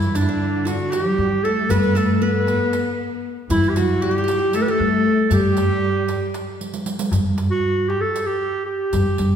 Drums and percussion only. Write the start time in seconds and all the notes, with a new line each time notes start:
0.02 riq, darbuka ka
0.15 riq, darbuka tek
0.41 darbuka ka
0.67 riq, darbuka tek
0.93 riq, darbuka tek
1.70 riq, darbuka dum
1.83 riq, darbuka ka
1.96 riq, darbuka tek
2.22 darbuka ka
2.47 riq, darbuka tek
2.73 riq, darbuka tek
3.50 riq, darbuka dum
3.64 riq, darbuka ka
3.76 riq, darbuka tek
4.02 darbuka ka
4.28 riq, darbuka tek
4.53 riq, darbuka tek
5.31 riq, darbuka dum
5.57 riq, darbuka tek
5.83 darbuka ka
6.08 riq, darbuka tek
6.34 riq, darbuka tek
6.61 riq
6.74 riq
6.86 riq
6.99 riq
7.12 riq, darbuka dum
7.25 darbuka ka
7.38 riq, darbuka tek
7.90 darbuka tek
8.16 riq, darbuka tek
8.93 riq, darbuka dum
9.18 riq, darbuka tek